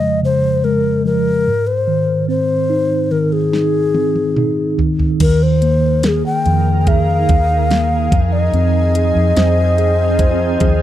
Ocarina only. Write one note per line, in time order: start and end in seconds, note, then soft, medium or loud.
0.00 0.20 D#5 loud
0.25 0.66 C5 medium
0.64 1.05 A#4 medium
1.06 1.69 A#4 medium
1.67 2.29 C5 medium
2.29 3.13 C5 medium
3.11 3.34 A#4 medium
3.33 4.79 G#4 medium
5.22 5.44 A#4 medium
5.43 6.06 C5 medium
6.05 6.25 G#4 medium
6.05 6.09 A#4 medium
6.26 6.81 G5 medium
6.81 6.89 G5 medium
6.88 8.34 F5 medium
8.32 10.82 D#5 medium